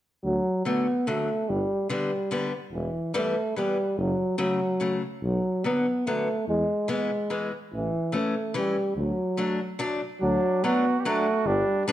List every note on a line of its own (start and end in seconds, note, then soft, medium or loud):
0.24 0.39 D2 medium
0.24 0.63 F#3 medium
0.65 0.86 D3 medium
0.65 0.86 F#3 soft
0.65 0.86 A3 medium
0.65 1.09 B3 medium
1.07 1.28 D3 soft
1.07 1.28 F#3 soft
1.07 1.28 A3 medium
1.07 1.51 A3 medium
1.49 1.63 G1 medium
1.49 1.90 G3 medium
1.89 2.10 D3 soft
1.89 2.10 G3 medium
1.89 2.50 G3 medium
1.89 2.10 B3 medium
2.31 2.51 D3 soft
2.31 2.52 G3 medium
2.31 2.52 B3 medium
2.73 2.87 E1 medium
2.73 3.11 E3 medium
3.14 3.35 E3 medium
3.14 3.34 G3 medium
3.14 3.53 A3 medium
3.14 3.35 B3 medium
3.56 3.77 E3 medium
3.56 3.95 G3 medium
3.56 3.77 G3 soft
3.56 3.77 B3 medium
3.97 4.12 F#1 medium
3.97 4.37 F#3 medium
4.38 4.59 C#3 medium
4.38 4.59 F#3 soft
4.38 4.99 F#3 medium
4.38 4.59 A3 medium
4.80 5.01 C#3 soft
4.80 5.01 F#3 soft
4.80 5.01 A3 soft
5.22 5.37 B1 medium
5.22 5.66 F#3 medium
5.64 5.85 D3 medium
5.64 5.85 F#3 soft
5.64 6.08 B3 medium
5.64 5.85 B3 medium
6.07 6.27 D3 soft
6.07 6.27 F#3 soft
6.07 6.48 A3 medium
6.07 6.27 B3 medium
6.48 6.63 E2 medium
6.48 6.87 G#3 loud
6.88 7.10 E3 medium
6.88 7.10 G#3 soft
6.88 7.51 G#3 medium
6.88 7.10 B3 medium
7.30 7.51 E3 medium
7.30 7.51 G#3 medium
7.30 7.51 B3 soft
7.73 7.88 A1 medium
7.73 8.17 E3 medium
8.12 8.34 E3 medium
8.12 8.34 A3 medium
8.12 8.56 A3 medium
8.12 8.34 C#4 medium
8.54 8.75 E3 medium
8.54 8.95 G3 medium
8.54 8.76 A3 soft
8.54 8.75 C#4 soft
8.96 9.11 D2 medium
8.96 9.76 F#3 medium
9.37 9.59 F#3 medium
9.37 9.58 A3 medium
9.37 9.59 D4 soft
9.79 10.00 F#3 medium
9.79 10.00 A3 soft
9.79 10.00 D4 medium
10.21 10.37 D2 medium
10.21 10.65 F#3 loud
10.21 10.66 D4 medium
10.64 10.84 F#3 medium
10.64 10.84 A3 medium
10.64 10.99 B3 medium
10.64 10.84 D4 medium
10.64 11.02 F#4 medium
10.99 11.07 B3 medium
10.99 11.06 G4 medium
11.04 11.26 F#3 medium
11.04 11.25 A3 soft
11.04 11.48 A3 loud
11.04 11.26 D4 medium
11.04 11.48 F#4 medium
11.46 11.61 G1 loud
11.46 11.87 G3 loud
11.46 11.85 D4 medium
11.85 11.92 G3 medium
11.85 11.92 B3 medium
11.85 11.92 D4 medium